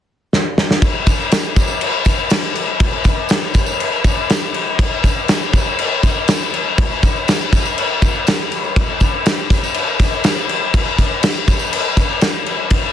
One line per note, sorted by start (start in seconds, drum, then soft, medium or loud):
0.33 snare medium
0.58 snare medium
0.71 snare loud
0.82 kick loud
0.82 tambourine soft
0.82 crash medium
1.06 kick medium
1.06 tambourine medium
1.06 crash medium
1.31 snare loud
1.31 tambourine loud
1.31 crash medium
1.45 tambourine soft
1.56 kick medium
1.56 tambourine medium
1.56 crash medium
1.68 tambourine medium
1.81 crash medium
1.92 tambourine soft
2.05 kick medium
2.05 tambourine medium
2.05 crash medium
2.30 snare loud
2.30 tambourine loud
2.30 crash medium
2.55 crash medium
2.80 kick loud
2.80 tambourine soft
2.80 crash medium
3.04 kick medium
3.04 tambourine medium
3.04 crash medium
3.29 snare loud
3.29 tambourine medium
3.29 crash medium
3.42 tambourine soft
3.54 kick medium
3.54 tambourine medium
3.54 crash medium
3.66 tambourine medium
3.80 crash medium
3.92 tambourine soft
4.04 kick medium
4.04 tambourine medium
4.04 crash medium
4.30 snare loud
4.30 tambourine medium
4.30 crash medium
4.54 crash medium
4.79 kick loud
4.79 tambourine soft
4.79 crash medium
5.04 kick medium
5.04 tambourine medium
5.04 crash medium
5.28 snare loud
5.28 tambourine loud
5.28 crash medium
5.43 tambourine soft
5.53 kick medium
5.53 tambourine medium
5.53 crash medium
5.79 crash medium
6.03 kick medium
6.03 tambourine medium
6.03 crash medium
6.28 snare loud
6.28 tambourine loud
6.28 crash medium
6.54 crash medium
6.78 kick loud
6.78 tambourine soft
6.78 crash medium
6.92 tambourine soft
7.03 kick medium
7.03 tambourine medium
7.03 crash medium
7.16 tambourine soft
7.28 snare loud
7.28 tambourine loud
7.28 crash medium
7.42 tambourine soft
7.53 kick medium
7.53 tambourine medium
7.53 crash medium
7.65 tambourine medium
7.78 crash medium
8.02 kick medium
8.02 tambourine medium
8.02 crash medium
8.15 tambourine soft
8.27 snare loud
8.27 tambourine loud
8.27 crash medium
8.39 tambourine soft
8.52 tambourine soft
8.52 crash medium
8.64 tambourine soft
8.76 kick loud
8.76 tambourine soft
8.76 crash medium
9.00 kick medium
9.00 tambourine medium
9.00 crash medium
9.26 snare loud
9.26 tambourine loud
9.26 crash medium
9.39 tambourine soft
9.50 kick loud
9.50 tambourine medium
9.50 crash medium
9.64 tambourine medium
9.74 crash medium
9.87 tambourine soft
9.99 kick medium
9.99 tambourine medium
9.99 crash medium
10.24 snare loud
10.24 tambourine medium
10.24 crash medium
10.49 crash medium
10.74 kick loud
10.74 tambourine soft
10.74 crash medium
10.98 kick medium
10.98 tambourine medium
10.98 crash medium
11.23 snare loud
11.23 tambourine medium
11.23 crash loud
11.36 tambourine soft
11.48 kick medium
11.48 tambourine medium
11.48 crash medium
11.59 tambourine medium
11.73 crash medium
11.84 tambourine soft
11.97 kick medium
11.97 tambourine medium
11.97 crash medium
12.21 snare loud
12.21 tambourine medium
12.21 crash medium
12.46 crash medium
12.70 kick loud
12.70 tambourine soft
12.70 crash medium